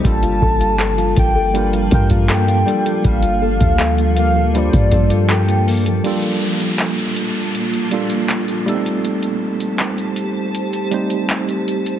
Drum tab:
HH |xx-xxxx-xxxxxxxx|xx-xxxx-xxxxxxox|xx-xxxx-xxxxxxxx|xx-xxxx-xxxxxxxx|
CP |----x-------x---|----x-------x---|----x-------x---|----x-------x---|
BD |o-o---o---oo----|o--o-----oo-----|----------------|----------------|